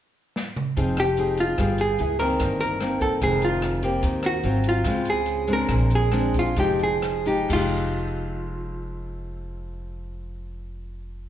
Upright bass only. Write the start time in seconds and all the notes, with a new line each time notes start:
0.77 F1
1.58 G1
2.00 C#2
2.40 G1
3.22 F1
4.03 D#2
4.43 G#1
4.85 C#2
5.69 A#1
6.57 F1
7.50 F1